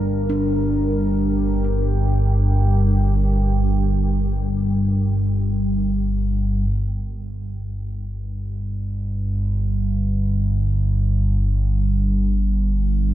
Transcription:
0.00 6.67 G1 medium
0.00 6.67 G2 medium
0.00 6.68 G3 medium
0.00 6.67 D4 medium
0.00 0.47 A4 medium
0.00 6.69 A#4 medium
0.20 6.67 G4 medium
0.30 5.73 D4 soft
6.68 13.14 G1 medium
6.68 13.14 G2 medium

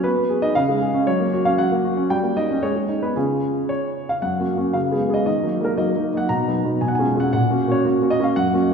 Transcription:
0.04 0.15 B3 soft
0.04 0.42 B4 medium
0.17 0.37 B3 soft
0.29 0.50 G#4 soft
0.42 0.55 D#4 soft
0.42 0.55 D#5 medium
0.55 1.05 C#3 soft
0.55 1.07 F5 medium
0.69 0.89 G#3 soft
0.82 1.02 G#4 soft
0.94 1.07 C#4 soft
1.07 1.57 F#3 soft
1.07 1.45 C#5 medium
1.20 1.40 A#3 soft
1.33 1.53 F#4 soft
1.45 1.66 C#4 soft
1.45 1.58 F5 medium
1.58 2.09 F#3 soft
1.58 2.10 F#5 medium
1.72 1.92 A#3 soft
1.84 2.05 F#4 soft
1.97 2.10 C#4 soft
2.10 2.61 G3 medium
2.10 2.36 G5 medium
2.23 2.44 A#3 soft
2.37 2.57 D#4 soft
2.37 2.63 D#5 medium
2.51 2.63 C#4 soft
2.63 2.74 G#3 soft
2.63 3.02 C#5 medium
2.75 2.97 G#3 soft
2.89 3.10 D#4 soft
3.02 3.16 B3 soft
3.02 3.16 B4 medium
3.16 3.54 C#3 soft
3.16 3.59 C#4 soft
3.16 3.59 F4 soft
3.16 3.69 G#4 soft
3.69 4.09 C#5 medium
4.09 4.23 F5 medium
4.22 4.39 F#2 soft
4.22 4.74 F#5 medium
4.39 4.55 A#3 soft
4.39 4.56 C#4 soft
4.39 4.56 F#4 soft
4.57 4.73 A#3 soft
4.57 4.73 C#4 soft
4.57 4.73 F#4 soft
4.73 4.91 C#3 soft
4.73 5.13 F5 medium
4.91 5.07 G#3 soft
4.91 5.07 B3 soft
4.91 5.08 G#4 soft
5.09 5.25 G#3 soft
5.09 5.25 B3 soft
5.09 5.25 G#4 soft
5.14 5.24 D#5 medium
5.26 5.43 D#3 soft
5.26 5.65 D#5 medium
5.43 5.59 F#3 soft
5.43 5.59 A#3 soft
5.43 5.59 D#4 soft
5.60 5.76 F#3 soft
5.60 5.77 A#3 soft
5.60 5.77 D#4 soft
5.65 5.78 A#4 soft
5.78 5.94 F#3 soft
5.78 5.94 A#3 soft
5.78 5.94 D#4 soft
5.78 6.17 D#5 medium
5.95 6.11 F#3 soft
5.95 6.11 A#3 soft
5.95 6.12 D#4 soft
6.14 6.29 F#3 soft
6.14 6.29 A#3 soft
6.14 6.29 D#4 soft
6.14 6.30 F#5 medium
6.29 6.47 B2 soft
6.29 6.81 A#5 medium
6.47 6.63 F#3 soft
6.47 6.63 B3 soft
6.47 6.63 D#4 soft
6.64 6.80 F#3 soft
6.64 6.80 B3 soft
6.64 6.81 D#4 soft
6.81 6.98 B2 soft
6.81 6.88 G#5 medium
6.88 6.96 F#5 medium
6.95 7.20 G#5 medium
6.99 7.14 G#3 soft
6.99 7.15 C#4 soft
6.99 7.15 F4 soft
7.16 7.31 G#3 soft
7.16 7.32 C#4 soft
7.16 7.32 F4 soft
7.20 7.31 F#5 medium
7.33 7.50 A#2 soft
7.33 7.72 F#5 medium
7.50 7.66 A#3 soft
7.50 7.66 C#4 soft
7.50 7.66 F#4 soft
7.67 7.83 A#3 soft
7.67 7.83 C#4 soft
7.67 7.84 F#4 soft
7.72 7.85 C#5 medium
7.84 8.00 A#3 soft
7.84 8.00 C#4 soft
7.84 8.01 F#4 soft
8.02 8.17 A#3 soft
8.02 8.18 C#4 soft
8.02 8.18 F#4 soft
8.10 8.24 D#5 medium
8.20 8.35 A#3 soft
8.20 8.35 C#4 soft
8.20 8.35 F#4 soft
8.24 8.37 F5 medium
8.36 8.53 F#2 soft
8.36 8.74 F#5 medium
8.53 8.69 A#3 soft
8.53 8.69 C#4 soft
8.53 8.70 F#4 soft

